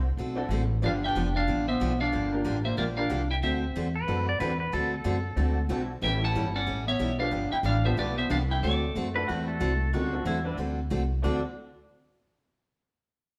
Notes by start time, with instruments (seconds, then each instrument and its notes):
Already playing: upright bass C2
0.17 upright bass B1, steel-string acoustic guitar D3 A3 C4 F#4 A4
0.35 honky-tonk piano C4 D4 E4 F#4 A4
0.49 upright bass A1, steel-string acoustic guitar D3 A3 C4 F#4 A4
0.82 upright bass G1, steel-string acoustic guitar D3 F3 B3 D4 G4, honky-tonk piano B3 D4 F4 G4 A4, clarinet D4, electric slide guitar D5 F5
1.04 clarinet D4, electric slide guitar E5 G5
1.15 upright bass F1, steel-string acoustic guitar D3 F3 B3 D4 G4
1.36 clarinet D4, electric slide guitar D5 F5
1.47 upright bass A1, steel-string acoustic guitar D3 F3 B3 D4 G4
1.68 clarinet B3, electric slide guitar C5 E5
1.80 upright bass B1, steel-string acoustic guitar D3 F3 B3 D4 G4
2.01 clarinet D4, electric slide guitar D5 F5
2.13 upright bass G1, steel-string acoustic guitar D3 F3 A#3 D4 G4
2.32 honky-tonk piano A#3 D4 F4 G4 A#4
2.44 upright bass A1, steel-string acoustic guitar D3 F3 A#3 D4 G4
2.64 clarinet A#3, electric slide guitar C5 E5
2.77 upright bass A#1, steel-string acoustic guitar D3 F3 A#3 D4 G4, clarinet A#3, electric slide guitar A#4 D5
2.97 honky-tonk piano A#3 D4 F4 G4 A#4, clarinet D4, electric slide guitar D5 F5
3.09 upright bass C2, steel-string acoustic guitar D3 F3 A#3 D4 G4
3.30 clarinet E4, electric slide guitar E5 G5
3.43 upright bass D2, steel-string acoustic guitar D3 A3 C4 F#4 A4, clarinet C4, electric slide guitar C5 E5
3.75 upright bass E2, steel-string acoustic guitar D3 A3 C4 F#4 A4
3.96 pedal steel guitar B4
4.07 upright bass F#2, steel-string acoustic guitar D3 A3 C4 F#4 A4, honky-tonk piano C4 D4 E4 F#4 A4
4.29 pedal steel guitar D5
4.38 upright bass E2, steel-string acoustic guitar D3 A3 C4 F#4 A4, honky-tonk piano C4 D4 E4 F#4 B4, pedal steel guitar B4
4.60 pedal steel guitar B4
4.72 upright bass D2, steel-string acoustic guitar D3 A3 C4 F#4 A4, pedal steel guitar A4
4.94 pedal steel guitar A4
5.04 upright bass F#2, steel-string acoustic guitar D3 A3 C4 F#4 A4
5.36 upright bass D2, steel-string acoustic guitar D3 A3 C4 F#4 A4, honky-tonk piano C4 D4 E4 F#4 A4
5.69 upright bass B1, steel-string acoustic guitar D3 A3 C4 F#4 A4, honky-tonk piano C4 D4 E4 F#4 A4
6.02 upright bass A1, steel-string acoustic guitar E3 G3 C#4 E4 A4, honky-tonk piano B3 C#4 E4 G4 A4, clarinet E4, electric slide guitar E5 G5
6.23 clarinet E4, electric slide guitar F#5 A5
6.35 upright bass G1, steel-string acoustic guitar E3 G3 C#4 E4 A4
6.55 clarinet C#4, electric slide guitar D5 F#5
6.66 upright bass A1, steel-string acoustic guitar E3 G3 C#4 E4 A4
6.87 clarinet B3, electric slide guitar C#5 E5
6.99 upright bass B1, steel-string acoustic guitar E3 G3 C#4 E4 A4
7.19 honky-tonk piano B3 D4 F4 G4 A4, clarinet D4, electric slide guitar D5 F5
7.31 upright bass G1, steel-string acoustic guitar D3 F3 B3 D4 G4
7.52 clarinet E4, electric slide guitar E5 G5, muted upright bass stroke
7.63 upright bass A1, steel-string acoustic guitar D3 F3 B3 D4 G4, clarinet D4, electric slide guitar D5 F5
7.84 honky-tonk piano B3 D4 F4 G4 A4, clarinet B3, electric slide guitar C5 E5
7.97 upright bass B1, steel-string acoustic guitar D3 F3 B3 D4 G4, clarinet A3, electric slide guitar B4 D5
8.16 clarinet B3, electric slide guitar C5 E5
8.30 upright bass C2, steel-string acoustic guitar D3 F3 B3 D4 G4, clarinet D4, electric slide guitar D5 F5
8.49 clarinet E4, electric slide guitar E5 G5
8.61 upright bass D2, steel-string acoustic guitar D3 A3 C4 F#4 A4, clarinet A3, electric slide guitar A4 D5
8.95 upright bass F#2, steel-string acoustic guitar D3 A3 C4 F#4 A4
9.15 honky-tonk piano C4 D4 E4 F#4 A4, pedal steel guitar B4
9.28 upright bass E2, steel-string acoustic guitar D3 A3 C4 F#4 A4, pedal steel guitar F#4
9.48 pedal steel guitar A4
9.60 upright bass C2, steel-string acoustic guitar D3 A3 C4 F#4 A4
9.92 upright bass D2, steel-string acoustic guitar D3 A3 C4 F#4 A4, honky-tonk piano C#4 D#4 F4 G4 A#4, pedal steel guitar F#4
10.06 clarinet G3, electric slide guitar C5
10.12 honky-tonk piano C4 D4 E4 F#4 A4
10.25 upright bass E2, steel-string acoustic guitar D3 A3 C4 F#4 A4, pedal steel guitar E4
10.44 honky-tonk piano C4 D4 E4 F#4 B4, pedal steel guitar D4
10.57 upright bass D2, steel-string acoustic guitar D3 A3 C4 F#4 A4
10.90 upright bass C2, steel-string acoustic guitar D3 A3 C4 F#4 A4
11.22 upright bass D2, steel-string acoustic guitar D3 A3 C4 F#4 A4, honky-tonk piano C4 D4 E4 F#4 A4, pedal steel guitar D4